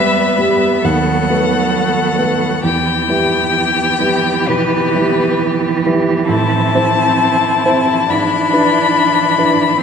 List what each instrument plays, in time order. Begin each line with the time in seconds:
Already playing: grand piano E2 G3 B3 G4, cello G3, viola B3, violin B4 E5
0.38 grand piano G3 B3 G4
0.83 grand piano D#2, cello F#3, violin A4 F#5
1.29 grand piano A3 B3 B4
2.18 grand piano A3 B3 B4
2.63 grand piano E2, cello E3, viola B3, violin G4 G5
3.09 grand piano G3 E4 B4
4.00 grand piano G3 E4 B4
4.47 grand piano B2, violin B4
4.95 grand piano G3 E4 B4
5.86 grand piano G3 E4 B4
6.28 grand piano A2, viola C4, violin E4 A5
6.75 grand piano C4 E4 C5
7.65 grand piano C4 E4 C5
8.09 grand piano G#2, cello E3, viola D4, violin B5
8.53 grand piano D4 E4 B4
9.38 grand piano D4 E4 B4